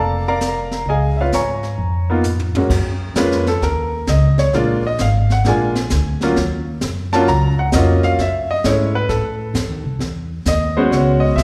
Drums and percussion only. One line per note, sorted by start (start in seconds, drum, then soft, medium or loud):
0.41 snare medium
0.41 hi-hat pedal medium
0.71 snare soft
0.86 brush sweep soft
1.32 snare medium
1.32 hi-hat pedal soft
1.63 snare soft
1.78 brush sweep soft
2.24 floor tom soft
2.24 hi-hat pedal medium
2.39 floor tom soft
2.55 floor tom medium
2.70 brush sweep soft
2.70 kick medium
2.70 snare soft
2.70 crash medium
3.16 snare medium
3.16 hi-hat pedal medium
3.32 snare soft
3.46 snare soft
3.62 brush sweep soft
3.62 snare soft
4.07 snare medium
4.07 hi-hat pedal soft
4.38 snare soft
4.53 brush sweep medium
4.53 snare soft
4.98 snare medium
4.98 hi-hat pedal medium
5.30 snare soft
5.45 brush sweep soft
5.45 snare soft
5.75 snare soft
5.90 snare medium
5.90 hi-hat pedal medium
6.21 snare soft
6.36 brush sweep soft
6.36 snare soft
6.81 snare medium
6.81 hi-hat pedal soft
7.12 snare soft
7.27 brush sweep soft
7.27 snare soft
7.72 snare medium
7.72 hi-hat pedal medium
8.03 snare soft
8.19 brush sweep medium
8.19 snare soft
8.64 snare medium
8.64 hi-hat pedal medium
9.09 brush sweep soft
9.09 snare soft
9.55 snare medium
9.55 hi-hat pedal medium
10.00 brush sweep medium
10.00 snare soft
10.46 snare medium
10.46 hi-hat pedal medium
10.92 brush sweep soft
10.92 snare soft
11.38 snare medium
11.38 hi-hat pedal medium